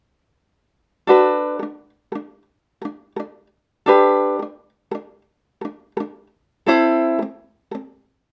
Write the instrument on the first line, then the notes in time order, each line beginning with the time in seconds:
ukulele
1.07 D4 F#4 A4 B4
1.59 D4 A4
2.12 D4 A4
2.82 D4 A4
3.16 D4 A4
3.86 D4 G4 A4 B4
4.39 D4 A4
4.91 D4 A4
5.61 D4 A4
5.97 D4 A4
6.66 C4 E4 A4 C5
7.19 A4
7.71 C4 A4